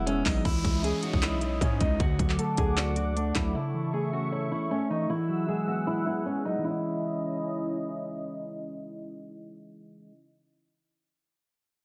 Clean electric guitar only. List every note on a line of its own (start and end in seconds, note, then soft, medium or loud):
0.00 0.45 B3 medium
0.00 0.45 E4 loud
0.07 0.45 G#3 medium
0.26 0.45 F#3 medium
0.45 1.42 E3 medium
0.64 1.61 G#3 medium
0.84 1.60 C#4 medium
1.03 1.41 D#4 medium
1.23 2.00 E4 loud
1.42 2.00 D#4 medium
1.61 2.00 C#4 medium
1.81 2.00 G#3 medium
2.00 2.97 D3 medium
2.19 3.16 F#3 medium
2.39 3.15 A3 medium
2.58 2.96 D4 medium
2.77 3.55 D5 loud
2.97 3.55 D4 medium
3.16 3.55 A3 medium
3.35 3.55 F#3 medium
3.55 4.52 C#3 medium
3.74 4.71 E3 medium
3.93 4.70 A3 medium
4.13 4.50 C#4 medium
4.32 5.10 C#5 loud
4.52 5.10 C#4 medium
4.71 5.10 A3 medium
4.90 5.08 E3 medium
5.09 6.06 E3 medium
5.29 6.26 F#3 medium
5.49 6.25 G#3 medium
5.67 6.05 B3 medium
5.87 6.65 E4 medium
6.06 6.64 B3 medium
6.26 6.61 G#3 medium
6.45 6.58 F#3 medium
6.59 10.08 E3 medium
6.59 10.12 G#3 medium
6.67 10.16 C#4 medium
6.71 10.20 D#5 medium